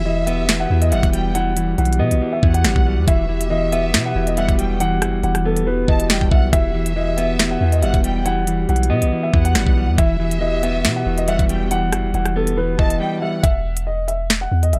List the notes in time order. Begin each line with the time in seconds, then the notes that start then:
Already playing: E1 E3 B3 F#4 G4 E5
0.05 E3 D#5
0.27 B3 E5, closed hi-hat
0.48 E3, snare, closed hi-hat
0.60 F#5
0.70 E2 E3
0.82 D#5, closed hi-hat
0.91 G1 G3 E5 F#5, closed hi-hat
1.03 E1, kick, closed hi-hat
1.13 G3 G5, closed hi-hat
1.35 E3 F#5, closed hi-hat
1.57 E3, closed hi-hat
1.78 B1 E3 F#5, closed hi-hat
1.85 closed hi-hat
1.93 closed hi-hat
1.99 B2 B3 D#5
2.11 B1, closed hi-hat
2.22 E3
2.33 E5
2.43 E2 E3 F#5, kick
2.54 F#5, closed hi-hat
2.64 G1 G3, snare, closed hi-hat
2.76 B1, kick
2.86 G3
2.98 E2
3.08 E1 E3 E5, kick, closed hi-hat
3.29 E3
3.41 closed hi-hat
3.50 E3 D#5
3.72 B3 E5, closed hi-hat
3.94 B2 E3, snare, closed hi-hat
4.06 F#5
4.16 E1 E3
4.27 D#5, closed hi-hat
4.37 G3 E5 F#5, closed hi-hat
4.49 E1, kick, closed hi-hat
4.58 G3 G5, closed hi-hat
4.80 E3 F#5, closed hi-hat
5.02 F#1 E3, cross-stick, closed hi-hat
5.13 E1
5.23 E1 E3 F#5, closed hi-hat
5.35 cross-stick, closed hi-hat
5.45 B3 A4
5.57 closed hi-hat
5.66 E3 B4
5.88 E1 E3 D#5 A5, kick
6.00 closed hi-hat
6.10 G3 G5, snare, closed hi-hat
6.21 D#1, kick
6.31 B1 G3 E5 F#5, kick
6.53 E1 E3 E5, kick, closed hi-hat
6.75 E3
6.86 closed hi-hat
6.96 E3 D#5
7.17 B3 E5, closed hi-hat
7.39 E3, snare, closed hi-hat
7.51 F#5
7.61 E2 E3
7.72 D#5, closed hi-hat
7.82 G1 G3 E5 F#5, closed hi-hat
7.94 E1, kick, closed hi-hat
8.04 G3 G5, closed hi-hat
8.25 E3 F#5, closed hi-hat
8.47 E3, closed hi-hat
8.69 B1 E3 F#5, closed hi-hat
8.76 closed hi-hat
8.83 closed hi-hat
8.90 B2 B3 D#5
9.02 B1, closed hi-hat
9.12 E3
9.23 E5
9.34 E2 E3 F#5, kick
9.45 F#5, closed hi-hat
9.55 G1 G3, snare, closed hi-hat
9.67 B1, kick
9.77 G3
9.88 E2
9.98 E1 E3 B3 F#4 G4 E5, kick, closed hi-hat
10.20 E3
10.31 closed hi-hat
10.41 E3 D#5
10.63 B3 E5, closed hi-hat
10.85 B2 E3, snare, closed hi-hat
10.96 F#5
11.06 E1 E3
11.18 D#5, closed hi-hat
11.28 G3 E5 F#5, closed hi-hat
11.39 E1, kick, closed hi-hat
11.49 G3 G5, closed hi-hat
11.71 E3 F#5, closed hi-hat
11.92 F#1 E3, cross-stick, closed hi-hat
12.04 E1
12.14 E1 E3 F#5, closed hi-hat
12.25 cross-stick, closed hi-hat
12.36 B3 A4
12.47 closed hi-hat
12.57 E3 B4
12.79 E1 E3 D#5 A5, kick
12.90 closed hi-hat
13.00 G3 G5
13.22 G3 E5 F#5
13.43 E1 E5, kick, closed hi-hat
13.77 closed hi-hat
13.87 D#5
14.08 E5, closed hi-hat
14.30 snare, closed hi-hat
14.41 F#5
14.52 E2
14.63 D#5, closed hi-hat
14.73 G1 E5, closed hi-hat